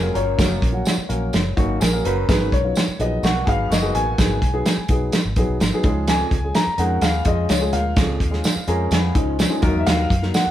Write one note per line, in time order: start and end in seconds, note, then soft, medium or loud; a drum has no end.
0.00 0.11 F1 medium
0.00 0.22 F#3 medium
0.00 0.22 A#3 medium
0.00 0.22 C#4 medium
0.00 0.13 G#4 medium
0.00 0.13 A#4 medium
0.00 0.22 A#4 medium
0.14 0.34 G1 medium
0.14 0.34 A#2 medium
0.14 0.82 C#4 medium
0.14 0.82 A#4 medium
0.14 1.53 C#5 medium
0.14 closed hi-hat medium
0.38 0.58 F#1 loud
0.38 0.72 F#2 medium
0.38 0.58 F#3 medium
0.38 0.58 A#3 medium
0.38 0.58 C#4 medium
0.38 0.58 A#4 medium
0.38 kick loud
0.38 snare loud
0.38 closed hi-hat loud
0.38 tambourine medium
0.62 0.82 A#1 medium
0.62 kick medium
0.62 closed hi-hat medium
0.72 0.93 F#3 medium
0.72 0.93 A#3 medium
0.72 0.93 C#4 medium
0.72 0.93 F#4 medium
0.85 snare loud
0.85 closed hi-hat medium
0.85 tambourine medium
0.98 muted fingered electric bass stroke soft
1.09 1.29 A#1 medium
1.09 1.35 F#3 medium
1.09 1.36 A#3 medium
1.09 1.36 C#4 medium
1.09 1.36 A#4 medium
1.09 closed hi-hat medium
1.33 1.53 F#1 medium
1.33 snare loud
1.33 closed hi-hat medium
1.33 tambourine medium
1.57 1.76 G#1 medium
1.57 1.77 F#3 medium
1.57 1.77 A#3 medium
1.57 1.80 A#3 medium
1.57 1.77 C#4 medium
1.57 1.77 D#4 medium
1.57 1.80 F#4 medium
1.57 kick medium
1.57 closed hi-hat medium
1.80 2.01 A#1 medium
1.80 2.03 G#4 medium
1.80 2.06 A#4 medium
1.80 snare loud
1.80 closed hi-hat medium
1.80 tambourine loud
1.93 2.12 F#3 medium
1.93 2.12 A#3 medium
1.93 2.13 C#4 medium
1.93 2.13 A#4 medium
2.05 2.24 F#1 medium
2.05 2.24 F#2 medium
2.05 2.72 C#4 medium
2.05 2.72 A#4 medium
2.05 2.28 B4 medium
2.05 closed hi-hat medium
2.28 2.48 G#1 loud
2.28 2.62 G#2 medium
2.28 2.48 F#3 medium
2.28 2.48 B3 medium
2.28 2.48 D#4 medium
2.28 2.48 G#4 medium
2.28 2.53 B4 medium
2.28 kick loud
2.28 snare loud
2.28 closed hi-hat loud
2.28 tambourine medium
2.52 2.72 B1 medium
2.52 2.96 C#5 medium
2.52 kick medium
2.52 closed hi-hat medium
2.64 2.84 F#3 medium
2.64 2.84 B3 medium
2.64 2.84 D#4 medium
2.64 2.84 F4 medium
2.76 snare loud
2.76 closed hi-hat medium
2.76 tambourine medium
2.88 muted fingered electric bass stroke soft
2.99 3.19 A#1 medium
2.99 3.19 A#2 medium
2.99 3.26 F#3 medium
2.99 3.26 B3 medium
2.99 3.26 D#4 medium
2.99 3.26 G#4 medium
2.99 3.25 D#5 medium
2.99 closed hi-hat medium
3.23 3.43 B1 loud
3.23 3.46 A#3 medium
3.23 3.45 F#4 medium
3.23 3.48 F#5 medium
3.23 snare loud
3.23 closed hi-hat medium
3.23 tambourine medium
3.46 3.67 G#1 medium
3.46 3.67 F#3 medium
3.46 3.69 B3 medium
3.46 3.67 B3 medium
3.46 3.67 D#4 medium
3.46 3.69 G#4 medium
3.46 3.67 G#4 medium
3.46 3.70 F5 medium
3.46 kick medium
3.46 closed hi-hat medium
3.70 3.90 F#1 medium
3.70 4.38 A#3 medium
3.70 4.38 F#4 medium
3.70 3.96 D#5 medium
3.70 snare loud
3.70 closed hi-hat medium
3.70 tambourine medium
3.82 4.02 F#3 medium
3.82 4.02 B3 medium
3.82 4.02 D#4 medium
3.82 4.02 G#4 medium
3.94 4.14 A1 medium
3.94 4.14 B2 medium
3.94 4.85 G#5 loud
3.94 closed hi-hat medium
4.18 4.38 G#1 loud
4.18 4.52 G#2 medium
4.18 4.38 F#3 medium
4.18 4.38 B3 medium
4.18 4.38 D#4 medium
4.18 4.38 G#4 medium
4.18 kick loud
4.18 snare loud
4.18 closed hi-hat loud
4.18 tambourine medium
4.42 4.61 B1 medium
4.42 kick medium
4.42 closed hi-hat medium
4.54 4.73 F#3 medium
4.54 4.73 B3 medium
4.54 4.73 D#4 medium
4.54 4.73 G#4 medium
4.66 snare loud
4.66 closed hi-hat medium
4.66 tambourine medium
4.78 muted fingered electric bass stroke soft
4.88 5.08 B1 medium
4.88 5.16 F#3 medium
4.88 5.16 B3 medium
4.88 5.16 D#4 medium
4.88 5.16 G#4 medium
4.88 kick medium
4.88 closed hi-hat medium
5.12 snare loud
5.12 closed hi-hat loud
5.12 tambourine medium
5.25 5.35 G#1 medium
5.36 5.46 A#1 medium
5.36 5.57 F#3 medium
5.36 5.56 B3 medium
5.36 5.56 D#4 medium
5.36 5.57 G#4 medium
5.36 kick medium
5.36 closed hi-hat medium
5.48 5.58 B1 medium
5.60 5.70 G#1 medium
5.60 snare loud
5.60 closed hi-hat medium
5.60 tambourine medium
5.73 5.84 F#3 medium
5.73 5.85 B3 medium
5.73 5.85 D#4 medium
5.73 5.83 G#4 loud
5.83 6.23 C#2 loud
5.83 6.03 G#2 medium
5.83 6.31 F3 loud
5.83 6.32 G#3 medium
5.83 6.32 C#4 medium
5.83 6.32 G#4 medium
5.83 kick loud
5.83 closed hi-hat medium
6.07 6.41 F2 medium
6.07 6.57 G#5 loud
6.07 snare loud
6.07 closed hi-hat loud
6.07 tambourine medium
6.31 6.51 C#2 medium
6.31 kick medium
6.31 closed hi-hat medium
6.44 6.63 F3 medium
6.44 6.63 G#3 medium
6.44 6.63 C#4 medium
6.44 6.63 G#4 medium
6.55 6.80 A#5 loud
6.55 snare loud
6.55 closed hi-hat medium
6.55 tambourine medium
6.67 muted fingered electric bass stroke soft
6.78 6.98 F2 medium
6.78 6.98 G#2 medium
6.78 7.05 F3 medium
6.78 7.05 G#3 medium
6.78 7.05 C#4 medium
6.78 7.01 C#4 medium
6.78 7.05 G#4 medium
6.78 7.01 A#4 medium
6.78 7.03 F#5 medium
6.78 closed hi-hat medium
7.01 7.22 D#2 medium
7.01 7.25 B3 medium
7.01 7.25 G#4 medium
7.01 7.27 F5 medium
7.01 snare loud
7.01 closed hi-hat medium
7.01 tambourine medium
7.25 7.45 F2 medium
7.25 7.45 F3 medium
7.25 7.46 G#3 medium
7.25 7.93 G#3 medium
7.25 7.46 C#4 medium
7.25 7.93 F4 medium
7.25 7.46 G#4 medium
7.25 7.51 D#5 medium
7.25 kick medium
7.25 closed hi-hat medium
7.49 7.69 C#2 medium
7.49 7.74 C#5 medium
7.49 snare loud
7.49 closed hi-hat medium
7.49 tambourine medium
7.61 7.81 F3 medium
7.61 7.81 G#3 medium
7.61 7.81 C#4 medium
7.61 7.81 G#4 medium
7.73 7.93 D2 medium
7.73 7.92 A#2 medium
7.73 9.11 F5 medium
7.73 closed hi-hat medium
7.96 8.16 C#2 loud
7.96 8.30 F2 medium
7.96 8.16 F3 medium
7.96 8.17 G#3 medium
7.96 8.17 C#4 medium
7.96 8.17 G#4 medium
7.96 kick loud
7.96 snare loud
7.96 closed hi-hat loud
7.96 tambourine medium
8.20 8.40 D#2 medium
8.20 kick medium
8.20 closed hi-hat medium
8.31 8.52 F3 medium
8.31 8.52 G#3 medium
8.31 8.52 C#4 medium
8.31 8.52 G#4 medium
8.31 snare soft
8.44 snare loud
8.44 closed hi-hat medium
8.44 tambourine loud
8.56 muted fingered electric bass stroke soft
8.68 8.87 F2 medium
8.68 8.94 F3 medium
8.68 8.94 G#3 medium
8.68 8.94 C#4 medium
8.68 8.91 C#4 medium
8.68 8.94 G#4 loud
8.68 8.91 A#4 medium
8.68 closed hi-hat medium
8.91 9.11 F2 loud
8.91 9.15 B3 medium
8.91 9.14 G#4 medium
8.91 snare loud
8.91 closed hi-hat medium
8.91 tambourine medium
9.14 9.45 C#2 medium
9.14 9.35 F3 medium
9.14 9.61 F3 medium
9.14 9.35 G#3 medium
9.14 9.35 C#4 medium
9.14 9.61 C#4 medium
9.14 9.35 D#4 medium
9.14 kick loud
9.14 closed hi-hat medium
9.39 snare loud
9.39 closed hi-hat medium
9.39 tambourine medium
9.50 9.62 F3 medium
9.50 9.62 G#3 medium
9.50 9.62 C#4 medium
9.50 9.60 D#4 loud
9.62 9.72 D#2 medium
9.62 9.82 F#2 medium
9.62 10.10 F#3 loud
9.62 10.10 A#3 medium
9.62 10.10 D#4 medium
9.62 10.10 A#4 loud
9.62 kick loud
9.62 closed hi-hat medium
9.75 9.85 E2 medium
9.79 9.86 E5 medium
9.86 10.20 D#2 medium
9.86 10.06 D#2 loud
9.86 10.35 F5 loud
9.86 snare loud
9.86 closed hi-hat loud
9.86 tambourine medium
10.10 10.30 F#2 medium
10.10 kick medium
10.10 closed hi-hat medium
10.22 10.42 F#3 medium
10.22 10.42 A#3 medium
10.22 10.42 D#4 medium
10.22 10.42 A#4 medium
10.22 snare soft
10.34 10.51 F#5 loud
10.34 snare medium
10.34 closed hi-hat medium
10.34 tambourine medium
10.47 muted fingered electric bass stroke soft